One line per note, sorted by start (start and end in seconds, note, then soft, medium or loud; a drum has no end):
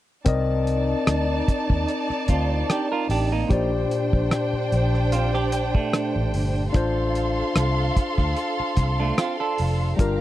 0.25 0.93 C2 loud
0.25 3.46 C4 medium
0.25 3.46 D#4 medium
0.25 3.46 A#4 medium
0.25 3.46 D5 medium
0.25 3.47 D5 soft
0.25 3.48 D#5 medium
0.25 3.47 A5 medium
0.25 kick loud
0.25 closed hi-hat medium
0.67 closed hi-hat medium
1.07 1.40 D2 medium
1.07 cross-stick medium
1.07 closed hi-hat medium
1.48 kick medium
1.48 closed hi-hat medium
1.69 1.85 D#2 medium
1.69 kick medium
1.88 closed hi-hat medium
2.10 muted fingered electric bass stroke soft
2.10 cross-stick soft
2.28 2.62 D2 medium
2.28 2.68 C4 soft
2.28 2.68 F4 medium
2.28 kick medium
2.28 closed hi-hat medium
2.70 2.91 D4 soft
2.70 2.91 G4 medium
2.70 cross-stick medium
2.70 closed hi-hat medium
2.92 3.10 F4 medium
2.92 3.09 A#4 medium
3.09 3.43 A1 medium
3.09 3.31 D4 medium
3.09 3.31 G4 medium
3.09 open hi-hat medium
3.32 3.71 A#3 medium
3.32 3.71 D#4 medium
3.49 3.84 A#1 medium
3.49 6.70 A#2 medium
3.49 6.70 D4 medium
3.49 6.71 G4 medium
3.49 6.70 C5 medium
3.49 6.71 C5 medium
3.49 6.72 D5 medium
3.49 6.70 G5 medium
3.49 kick medium
3.49 closed hi-hat medium
3.91 closed hi-hat medium
4.13 4.28 A#1 medium
4.13 kick medium
4.31 cross-stick loud
4.31 closed hi-hat medium
4.53 muted fingered electric bass stroke soft
4.72 5.71 A#1 medium
4.72 closed hi-hat medium
4.94 cross-stick soft
5.12 5.34 C4 medium
5.12 5.33 F4 medium
5.12 closed hi-hat medium
5.34 5.73 D4 medium
5.34 5.73 G4 medium
5.34 cross-stick soft
5.52 closed hi-hat medium
5.75 6.71 A3 medium
5.75 6.71 D4 medium
5.75 kick medium
5.93 cross-stick loud
5.93 closed hi-hat medium
6.16 6.31 A1 medium
6.34 6.68 G1 medium
6.34 open hi-hat medium
6.73 7.41 A1 medium
6.73 9.94 D4 medium
6.73 9.95 F4 medium
6.73 9.94 A4 medium
6.73 9.96 C5 medium
6.73 9.94 F5 medium
6.73 9.94 C6 medium
6.73 kick medium
6.73 closed hi-hat medium
7.15 closed hi-hat medium
7.56 7.89 C2 medium
7.56 cross-stick loud
7.56 closed hi-hat medium
7.97 kick medium
7.97 closed hi-hat medium
8.18 8.33 D2 medium
8.18 kick medium
8.18 cross-stick soft
8.36 closed hi-hat medium
8.60 muted fingered electric bass stroke soft
8.77 9.11 C2 medium
8.77 kick medium
8.77 closed hi-hat medium
9.00 9.17 A3 medium
9.00 9.17 D4 medium
9.18 9.39 C4 medium
9.18 9.39 F4 medium
9.18 cross-stick loud
9.18 closed hi-hat medium
9.40 9.97 D4 soft
9.40 9.96 A4 medium
9.58 9.92 F1 medium
9.58 open hi-hat medium
9.97 10.21 G1 medium
9.97 10.21 G3 medium
9.97 10.21 D4 medium
9.97 10.21 F4 medium
9.97 10.21 G4 medium
9.97 10.21 A#4 medium
9.97 10.21 F5 medium
9.97 10.21 A#5 medium
9.97 kick medium
9.97 closed hi-hat medium